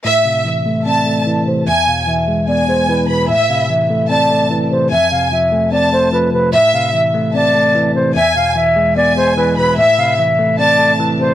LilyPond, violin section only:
\new Staff \with { instrumentName = "Violin section" } { \time 4/4 \key a \minor \tempo 4 = 148 e''4 r4 a''4 r4 | gis''4 r4 gis''4. b''8 | e''4 r4 a''4 r4 | gis''4 r4 a''4 r4 |
e''4 r4 a''4 r4 | gis''4 r4 gis''4. b''8 | e''4 r4 a''4 r4 | }